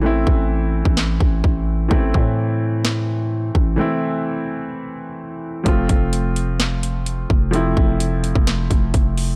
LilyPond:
<<
  \new Staff \with { instrumentName = "Grand piano" } { \time 4/4 \key a \minor \tempo 4 = 128 <e a c' e'>1 | <e a c' e'>1 | <e a c' e'>1 | <f a c' f'>1 |
<f a c' e'>1 | }
  \new Staff \with { instrumentName = "808-style bass" } { \clef bass \time 4/4 \key a \minor a,,8 a,,4~ a,,16 a,,8. a,,8 a,,4 | a,,8 a,2. a,,8 | r1 | f,,8 f,,2. f,,8~ |
f,,8 f,,4~ f,,16 f,,8. f,,8 f,,4 | }
  \new DrumStaff \with { instrumentName = "Drums" } \drummode { \time 4/4 r8 bd8 r8. bd16 <hc sn>8 bd8 bd4 | bd8 bd8 r4 <hc sn>4 r8 bd8 | r4 r4 r4 r4 | <hh bd>8 <hh bd>8 hh8 hh8 <hc hh sn>8 hh8 hh8 bd8 |
hh8 bd8 hh8 hh16 bd16 <hc hh sn>8 <hh bd>8 <hh bd>8 hho8 | }
>>